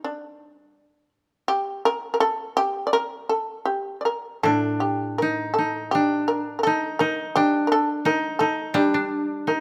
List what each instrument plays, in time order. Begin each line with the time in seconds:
Already playing: koto G3 D#4
0.04 shamisen D4
1.48 shamisen G4
1.85 shamisen A#4
2.14 shamisen A#4
2.20 shamisen A4
2.57 shamisen G4
2.87 shamisen D5
2.93 shamisen A#4
3.29 shamisen A4
3.65 shamisen G4
4.01 shamisen D5
4.05 shamisen A#4
4.43 koto A2 D4, shamisen A4
4.80 shamisen G4
5.18 koto D#4, shamisen A#4
5.54 shamisen A4
5.58 koto D#4
5.91 koto D4, shamisen G4
6.28 shamisen A#4
6.59 shamisen A#4
6.63 koto D#4, shamisen A4
6.99 koto D#4, shamisen A#4
7.36 koto D4, shamisen G4
7.67 shamisen A#4
7.72 shamisen A4
8.05 koto D#4, shamisen A#4
8.39 koto D#4, shamisen A4
8.74 koto G3 D4, shamisen G4
8.94 koto D4
9.47 koto D#4, shamisen A#4